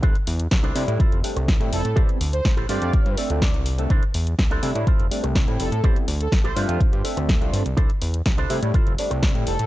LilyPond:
<<
  \new Staff \with { instrumentName = "Analog polysynth" } { \time 4/4 \key c \major \tempo 4 = 124 r2. r8 a'8 | r8. c''8 r16 d''4 r4. | r2. r8 a'8 | r8. a'8 c''16 r2 r8 |
r2. r8 a'8 | }
  \new Staff \with { instrumentName = "Clean electric guitar" } { \time 4/4 \key c \major << { r1 | r4. g''8 f''8 d''8 d''4 | r1 | r1 |
r1 | } \\ { <d' e' a' c''>16 r4 <d' e' a' c''>16 r8 <e' f' a' c''>8 r4. | <e' g' a' c''>16 r4 <e' g' a' c''>16 <d' f' g' c''>4 r4. | <d' e' a' c''>16 r4 <d' e' a' c''>16 r8 <e' f' a' c''>8 r4. | <e' g' a' c''>16 r4 <e' g' a' c''>16 <d' f' g' c''>4 r4. |
<d' e' a' c''>16 r4 <d' e' a' c''>16 r8 <e' f' a' c''>8 r4. | } >> }
  \new Staff \with { instrumentName = "Tine electric piano" } { \time 4/4 \key c \major r4. <g a d' e'>16 <g a d' e'>16 r8 <g a c' d'>8. <g a c' e'>8 r16 | <g b c' e'>8 r4 <a c' d' f'>16 <a c' d' f'>16 r8 <a c' d' a'>16 <a c' d' f'>16 r8. <a c' d' a'>16 | r4. <g a d' e'>16 <g a d' e'>16 r8 <g a c' d'>8. <g a c' e'>8 r16 | <g b c' e'>8 r4 <a c' d' f'>16 <a c' d' f'>16 r8 <a c' d' e''>8. <a c' d' f'>8 r16 |
r4. <g a d' e'>16 <g a d' e'>16 r8 <g a c' d'>8. <g a c' e'>8 r16 | }
  \new Staff \with { instrumentName = "Analog synth bass" } { \clef bass \time 4/4 \key c \major c,16 r16 e,8 c,8 c16 a,16 f,,16 f,,16 r16 c,8 a,16 f,,16 a,16 | a,,16 r16 d,8 a,,8 g,16 f,16 r16 g,16 r16 d,8 c,8. | c,16 r16 e,8 c,8 c16 a,16 f,,16 f,,16 r16 c,8 a,16 f,,16 a,16 | a,,16 r16 d,8 a,,8 g,16 f,16 r16 g,16 r16 d,8 c,16 g,16 c,16 |
c,16 r16 e,8 c,8 c16 a,16 f,,16 f,,16 r16 c,8 a,16 f,,16 a,16 | }
  \new DrumStaff \with { instrumentName = "Drums" } \drummode { \time 4/4 <hh bd>16 hh16 hho16 hh16 <hh bd sn>16 hh16 hho16 hh16 <hh bd>16 hh16 hho16 hh16 <hh bd sn>16 hh16 hho16 hh16 | <hh bd>16 hh16 hho16 hh16 <hh bd sn>16 hh16 hho16 hh16 <hh bd>16 hh16 hho16 hh16 <hh bd sn>16 hh16 hho16 hh16 | <hh bd>16 hh16 hho16 hh16 <hh bd sn>16 hh16 hho16 hh16 <hh bd>16 hh16 hho16 hh16 <hh bd sn>16 hh16 hho16 hh16 | <hh bd>16 hh16 hho16 hh16 <hh bd sn>16 hh16 hho16 hh16 <hh bd>16 hh16 hho16 hh16 <hh bd sn>16 hh16 hho16 hh16 |
<hh bd>16 hh16 hho16 hh16 <hh bd sn>16 hh16 hho16 hh16 <hh bd>16 hh16 hho16 hh16 <hh bd sn>16 hh16 hho16 hh16 | }
>>